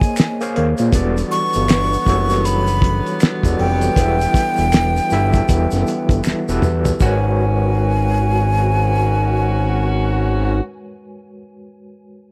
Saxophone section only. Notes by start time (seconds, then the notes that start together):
Already playing: F3 D#4 G#4
0.93 D3 F#3 B3
7.01 D#3 C#4 F#4